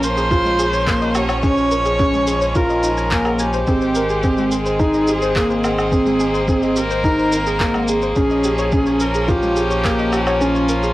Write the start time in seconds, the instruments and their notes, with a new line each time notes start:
Already playing: sub bass A#1, string quartet F3 A#3 C#4
0.03 synth arpeggio sound A#4, viola C5, shaker
0.17 synth arpeggio sound G#4, shaker
0.31 felt piano F4, synth arpeggio sound G#4, kick, shaker
0.45 synth arpeggio sound G#3, shaker
0.59 synth arpeggio sound G#4, shaker
0.73 synth arpeggio sound C#5, shaker
0.87 felt piano A#3, synth arpeggio sound G#4, kick, clap, shaker
1.01 synth arpeggio sound D#5, shaker
1.15 synth arpeggio sound G4, viola C#5, low woodblock, shaker
1.29 synth arpeggio sound C#5, low woodblock, shaker
1.43 string quartet G#3, felt piano C#4, synth arpeggio sound G#4, viola C#5, kick, shaker
1.57 synth arpeggio sound C#5, shaker
1.71 synth arpeggio sound A#4, shaker
1.85 synth arpeggio sound G#4, shaker
1.99 felt piano C#4, synth arpeggio sound G#4, kick, shaker
2.13 synth arpeggio sound G#3, shaker
2.27 synth arpeggio sound G#4, shaker
2.41 synth arpeggio sound C#5, shaker
2.55 felt piano F4, synth arpeggio sound G#4, viola A#4, kick, shaker
2.69 synth arpeggio sound D#5, shaker
2.83 synth arpeggio sound D#4, shaker
2.97 synth arpeggio sound G#5, shaker
3.11 felt piano A#3, synth arpeggio sound G#5, kick, clap, shaker
3.25 synth arpeggio sound G#4, low woodblock, shaker
3.39 viola G4, synth arpeggio sound G#5, shaker
3.53 synth arpeggio sound C5, shaker
3.67 sub bass G#1, string quartet D#3 G#3 C4, felt piano C4, synth arpeggio sound G#4, kick, shaker
3.81 synth arpeggio sound C5, shaker
3.95 synth arpeggio sound A#4, shaker
4.09 synth arpeggio sound G#4, shaker
4.23 felt piano C4, synth arpeggio sound G#4, kick, shaker
4.37 synth arpeggio sound G#3, shaker
4.52 synth arpeggio sound G#4, viola G#4, shaker
4.66 synth arpeggio sound C5, shaker
4.79 felt piano D#4, synth arpeggio sound G#4, kick, shaker
4.94 synth arpeggio sound D#5, shaker
5.07 synth arpeggio sound G4, shaker
5.22 synth arpeggio sound C5, shaker
5.36 felt piano A#3, synth arpeggio sound G#4, kick, clap, shaker
5.50 synth arpeggio sound C5, shaker
5.64 viola G#4, synth arpeggio sound A#4, low woodblock, shaker
5.78 synth arpeggio sound G#4, low woodblock, shaker
5.91 string quartet A#3, felt piano C4, synth arpeggio sound G#4, kick, shaker
6.06 synth arpeggio sound G#3, shaker
6.20 synth arpeggio sound G#4, shaker
6.34 synth arpeggio sound C5, shaker
6.48 felt piano C4, synth arpeggio sound G#4, kick, shaker
6.62 synth arpeggio sound D#5, shaker
6.76 synth arpeggio sound G4, viola A#4, shaker
6.91 synth arpeggio sound C5, shaker
7.04 felt piano D#4, synth arpeggio sound G#4, kick, shaker
7.19 synth arpeggio sound C5, shaker
7.32 synth arpeggio sound A#4, shaker
7.46 synth arpeggio sound G#4, shaker
7.60 felt piano A#3, synth arpeggio sound G#4, kick, clap, shaker
7.74 synth arpeggio sound G#3, low woodblock, shaker
7.88 synth arpeggio sound G#4, viola G#4, shaker
8.02 synth arpeggio sound C5, shaker
8.16 sub bass A#1, string quartet F3 C#4, felt piano C#4, synth arpeggio sound G#4, kick, shaker
8.30 synth arpeggio sound D#5, shaker
8.44 synth arpeggio sound G4, shaker
8.58 synth arpeggio sound C#5, shaker
8.72 felt piano C#4, synth arpeggio sound G#4, kick, shaker
8.86 synth arpeggio sound C#5, shaker
9.00 synth arpeggio sound A#4, viola A#4, shaker
9.14 synth arpeggio sound G#4, shaker
9.28 felt piano F4, viola G4, synth arpeggio sound G#4, kick, shaker
9.42 synth arpeggio sound G#3, shaker
9.56 synth arpeggio sound G#4, shaker
9.71 synth arpeggio sound C#5, shaker
9.85 felt piano A#3, synth arpeggio sound G#4, kick, clap, shaker
9.99 synth arpeggio sound D#5, shaker
10.13 synth arpeggio sound G4, low woodblock, shaker
10.27 synth arpeggio sound C#5, low woodblock, shaker
10.41 felt piano C#4, viola F4, synth arpeggio sound G#4, shaker
10.55 synth arpeggio sound C#5, shaker
10.69 synth arpeggio sound A#4, shaker
10.83 synth arpeggio sound G#4, shaker